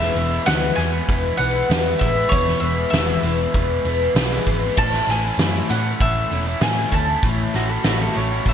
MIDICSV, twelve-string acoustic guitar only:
0, 0, Header, 1, 2, 480
1, 0, Start_track
1, 0, Key_signature, 3, "major"
1, 0, Tempo, 614754
1, 1806, Time_signature, 4, 2, 24, 8
1, 6664, End_track
2, 0, Start_track
2, 0, Title_t, "Twelve-string acoustic guitar"
2, 0, Program_c, 0, 25
2, 0, Note_on_c, 0, 52, 87
2, 0, Note_on_c, 0, 59, 93
2, 0, Note_on_c, 0, 64, 100
2, 0, Note_on_c, 0, 68, 106
2, 0, Note_on_c, 0, 71, 92
2, 119, Note_off_c, 0, 71, 0
2, 127, Note_off_c, 0, 52, 0
2, 129, Note_off_c, 0, 59, 0
2, 129, Note_off_c, 0, 64, 0
2, 129, Note_on_c, 0, 71, 53
2, 131, Note_off_c, 0, 68, 0
2, 140, Note_on_c, 0, 68, 49
2, 149, Note_on_c, 0, 64, 39
2, 367, Note_off_c, 0, 71, 0
2, 372, Note_off_c, 0, 68, 0
2, 377, Note_off_c, 0, 64, 0
2, 378, Note_on_c, 0, 52, 95
2, 383, Note_on_c, 0, 59, 91
2, 389, Note_on_c, 0, 68, 93
2, 392, Note_on_c, 0, 64, 83
2, 392, Note_on_c, 0, 71, 89
2, 601, Note_off_c, 0, 71, 0
2, 607, Note_off_c, 0, 68, 0
2, 610, Note_on_c, 0, 71, 48
2, 611, Note_off_c, 0, 52, 0
2, 611, Note_off_c, 0, 64, 0
2, 614, Note_off_c, 0, 59, 0
2, 617, Note_on_c, 0, 68, 49
2, 621, Note_on_c, 0, 64, 45
2, 848, Note_off_c, 0, 71, 0
2, 851, Note_off_c, 0, 68, 0
2, 853, Note_off_c, 0, 64, 0
2, 856, Note_on_c, 0, 59, 57
2, 865, Note_on_c, 0, 64, 64
2, 868, Note_on_c, 0, 68, 67
2, 873, Note_on_c, 0, 71, 60
2, 1068, Note_off_c, 0, 71, 0
2, 1077, Note_on_c, 0, 71, 55
2, 1078, Note_off_c, 0, 68, 0
2, 1088, Note_on_c, 0, 68, 50
2, 1089, Note_off_c, 0, 64, 0
2, 1091, Note_off_c, 0, 59, 0
2, 1098, Note_on_c, 0, 64, 49
2, 1313, Note_off_c, 0, 64, 0
2, 1318, Note_on_c, 0, 52, 88
2, 1319, Note_off_c, 0, 68, 0
2, 1321, Note_on_c, 0, 59, 87
2, 1322, Note_off_c, 0, 71, 0
2, 1322, Note_on_c, 0, 64, 80
2, 1329, Note_on_c, 0, 68, 90
2, 1333, Note_on_c, 0, 71, 84
2, 1560, Note_off_c, 0, 71, 0
2, 1562, Note_off_c, 0, 52, 0
2, 1563, Note_off_c, 0, 59, 0
2, 1564, Note_off_c, 0, 64, 0
2, 1567, Note_off_c, 0, 68, 0
2, 1569, Note_on_c, 0, 71, 59
2, 1577, Note_on_c, 0, 68, 57
2, 1585, Note_on_c, 0, 64, 48
2, 1788, Note_off_c, 0, 64, 0
2, 1793, Note_off_c, 0, 68, 0
2, 1796, Note_off_c, 0, 71, 0
2, 1797, Note_on_c, 0, 52, 94
2, 1798, Note_on_c, 0, 64, 91
2, 1799, Note_on_c, 0, 59, 95
2, 1803, Note_on_c, 0, 68, 88
2, 1805, Note_on_c, 0, 71, 98
2, 2037, Note_off_c, 0, 71, 0
2, 2042, Note_off_c, 0, 52, 0
2, 2042, Note_off_c, 0, 64, 0
2, 2043, Note_off_c, 0, 59, 0
2, 2045, Note_off_c, 0, 68, 0
2, 2046, Note_on_c, 0, 71, 54
2, 2055, Note_on_c, 0, 68, 48
2, 2067, Note_on_c, 0, 64, 46
2, 2283, Note_off_c, 0, 64, 0
2, 2283, Note_off_c, 0, 68, 0
2, 2287, Note_off_c, 0, 71, 0
2, 2287, Note_on_c, 0, 52, 81
2, 2288, Note_on_c, 0, 59, 94
2, 2292, Note_on_c, 0, 64, 81
2, 2293, Note_on_c, 0, 68, 98
2, 2298, Note_on_c, 0, 71, 94
2, 2512, Note_off_c, 0, 71, 0
2, 2522, Note_on_c, 0, 71, 53
2, 2526, Note_off_c, 0, 68, 0
2, 2527, Note_off_c, 0, 52, 0
2, 2528, Note_off_c, 0, 59, 0
2, 2530, Note_off_c, 0, 64, 0
2, 2536, Note_on_c, 0, 68, 48
2, 2545, Note_on_c, 0, 64, 43
2, 2764, Note_off_c, 0, 64, 0
2, 2764, Note_off_c, 0, 71, 0
2, 2764, Note_on_c, 0, 59, 60
2, 2771, Note_off_c, 0, 68, 0
2, 2773, Note_on_c, 0, 64, 51
2, 2781, Note_on_c, 0, 68, 66
2, 2782, Note_on_c, 0, 71, 63
2, 3003, Note_off_c, 0, 71, 0
2, 3006, Note_off_c, 0, 59, 0
2, 3010, Note_off_c, 0, 64, 0
2, 3013, Note_on_c, 0, 71, 67
2, 3014, Note_off_c, 0, 68, 0
2, 3026, Note_on_c, 0, 68, 63
2, 3035, Note_on_c, 0, 64, 44
2, 3241, Note_off_c, 0, 64, 0
2, 3245, Note_off_c, 0, 68, 0
2, 3247, Note_off_c, 0, 71, 0
2, 3247, Note_on_c, 0, 52, 96
2, 3248, Note_on_c, 0, 59, 77
2, 3250, Note_on_c, 0, 64, 79
2, 3254, Note_on_c, 0, 68, 100
2, 3256, Note_on_c, 0, 71, 91
2, 3481, Note_off_c, 0, 71, 0
2, 3487, Note_off_c, 0, 52, 0
2, 3488, Note_off_c, 0, 59, 0
2, 3488, Note_off_c, 0, 68, 0
2, 3489, Note_off_c, 0, 64, 0
2, 3491, Note_on_c, 0, 71, 71
2, 3497, Note_on_c, 0, 68, 56
2, 3506, Note_on_c, 0, 64, 56
2, 3723, Note_on_c, 0, 45, 80
2, 3725, Note_off_c, 0, 64, 0
2, 3725, Note_on_c, 0, 57, 90
2, 3728, Note_on_c, 0, 61, 90
2, 3729, Note_off_c, 0, 71, 0
2, 3729, Note_on_c, 0, 52, 86
2, 3731, Note_off_c, 0, 68, 0
2, 3734, Note_on_c, 0, 64, 97
2, 3737, Note_on_c, 0, 69, 106
2, 3957, Note_off_c, 0, 69, 0
2, 3958, Note_off_c, 0, 64, 0
2, 3965, Note_off_c, 0, 45, 0
2, 3965, Note_off_c, 0, 61, 0
2, 3966, Note_off_c, 0, 57, 0
2, 3966, Note_on_c, 0, 69, 52
2, 3967, Note_on_c, 0, 64, 52
2, 3968, Note_off_c, 0, 52, 0
2, 3975, Note_on_c, 0, 61, 47
2, 3980, Note_on_c, 0, 57, 42
2, 4204, Note_off_c, 0, 57, 0
2, 4205, Note_off_c, 0, 61, 0
2, 4207, Note_off_c, 0, 64, 0
2, 4207, Note_off_c, 0, 69, 0
2, 4208, Note_on_c, 0, 45, 88
2, 4208, Note_on_c, 0, 52, 89
2, 4214, Note_on_c, 0, 57, 94
2, 4214, Note_on_c, 0, 61, 101
2, 4216, Note_on_c, 0, 64, 83
2, 4216, Note_on_c, 0, 69, 92
2, 4443, Note_off_c, 0, 69, 0
2, 4448, Note_off_c, 0, 45, 0
2, 4448, Note_off_c, 0, 52, 0
2, 4451, Note_off_c, 0, 57, 0
2, 4451, Note_off_c, 0, 61, 0
2, 4451, Note_off_c, 0, 64, 0
2, 4453, Note_on_c, 0, 69, 50
2, 4461, Note_on_c, 0, 64, 48
2, 4464, Note_on_c, 0, 61, 48
2, 4470, Note_on_c, 0, 57, 40
2, 4679, Note_off_c, 0, 57, 0
2, 4688, Note_on_c, 0, 57, 57
2, 4690, Note_off_c, 0, 61, 0
2, 4690, Note_off_c, 0, 69, 0
2, 4694, Note_off_c, 0, 64, 0
2, 4699, Note_on_c, 0, 61, 64
2, 4705, Note_on_c, 0, 64, 68
2, 4711, Note_on_c, 0, 69, 61
2, 4915, Note_off_c, 0, 64, 0
2, 4917, Note_off_c, 0, 69, 0
2, 4925, Note_off_c, 0, 61, 0
2, 4925, Note_on_c, 0, 64, 50
2, 4926, Note_on_c, 0, 69, 55
2, 4927, Note_off_c, 0, 57, 0
2, 4935, Note_on_c, 0, 61, 45
2, 4940, Note_on_c, 0, 57, 48
2, 5164, Note_off_c, 0, 57, 0
2, 5166, Note_off_c, 0, 64, 0
2, 5166, Note_off_c, 0, 69, 0
2, 5167, Note_off_c, 0, 61, 0
2, 5168, Note_on_c, 0, 45, 70
2, 5172, Note_on_c, 0, 52, 74
2, 5173, Note_on_c, 0, 57, 70
2, 5176, Note_on_c, 0, 61, 83
2, 5181, Note_on_c, 0, 64, 89
2, 5183, Note_on_c, 0, 69, 84
2, 5399, Note_off_c, 0, 69, 0
2, 5403, Note_off_c, 0, 64, 0
2, 5407, Note_off_c, 0, 45, 0
2, 5408, Note_off_c, 0, 61, 0
2, 5409, Note_off_c, 0, 52, 0
2, 5409, Note_off_c, 0, 57, 0
2, 5409, Note_on_c, 0, 69, 62
2, 5413, Note_on_c, 0, 64, 51
2, 5417, Note_on_c, 0, 61, 52
2, 5425, Note_on_c, 0, 57, 52
2, 5637, Note_off_c, 0, 57, 0
2, 5639, Note_off_c, 0, 61, 0
2, 5641, Note_off_c, 0, 69, 0
2, 5641, Note_on_c, 0, 45, 91
2, 5643, Note_off_c, 0, 64, 0
2, 5647, Note_on_c, 0, 52, 88
2, 5647, Note_on_c, 0, 57, 84
2, 5649, Note_on_c, 0, 61, 98
2, 5651, Note_on_c, 0, 69, 97
2, 5653, Note_on_c, 0, 64, 96
2, 5875, Note_off_c, 0, 69, 0
2, 5880, Note_off_c, 0, 64, 0
2, 5883, Note_off_c, 0, 45, 0
2, 5884, Note_on_c, 0, 69, 54
2, 5886, Note_off_c, 0, 52, 0
2, 5886, Note_off_c, 0, 57, 0
2, 5887, Note_off_c, 0, 61, 0
2, 5890, Note_on_c, 0, 64, 57
2, 5897, Note_on_c, 0, 61, 49
2, 5902, Note_on_c, 0, 57, 41
2, 6124, Note_off_c, 0, 69, 0
2, 6127, Note_off_c, 0, 64, 0
2, 6128, Note_off_c, 0, 57, 0
2, 6130, Note_off_c, 0, 61, 0
2, 6134, Note_on_c, 0, 45, 92
2, 6138, Note_on_c, 0, 57, 97
2, 6140, Note_on_c, 0, 52, 102
2, 6143, Note_on_c, 0, 61, 95
2, 6144, Note_on_c, 0, 69, 111
2, 6149, Note_on_c, 0, 64, 98
2, 6362, Note_off_c, 0, 69, 0
2, 6369, Note_off_c, 0, 45, 0
2, 6371, Note_off_c, 0, 57, 0
2, 6371, Note_off_c, 0, 61, 0
2, 6371, Note_off_c, 0, 64, 0
2, 6371, Note_on_c, 0, 69, 67
2, 6372, Note_off_c, 0, 52, 0
2, 6380, Note_on_c, 0, 64, 51
2, 6381, Note_on_c, 0, 61, 51
2, 6394, Note_on_c, 0, 57, 48
2, 6593, Note_off_c, 0, 57, 0
2, 6599, Note_off_c, 0, 61, 0
2, 6602, Note_on_c, 0, 57, 67
2, 6607, Note_off_c, 0, 69, 0
2, 6608, Note_on_c, 0, 61, 77
2, 6609, Note_off_c, 0, 64, 0
2, 6618, Note_on_c, 0, 64, 74
2, 6622, Note_on_c, 0, 69, 61
2, 6664, Note_off_c, 0, 57, 0
2, 6664, Note_off_c, 0, 61, 0
2, 6664, Note_off_c, 0, 64, 0
2, 6664, Note_off_c, 0, 69, 0
2, 6664, End_track
0, 0, End_of_file